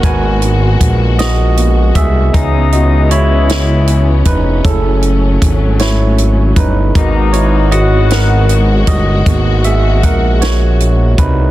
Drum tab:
HH |xxxxxx|xxxxxx|xxxxxx|xxxxxx|
SD |---o--|---o--|---o--|---o--|
BD |o-o--o|o----o|o-o--o|o----o|

HH |xxxxxx|
SD |---o--|
BD |o-o--o|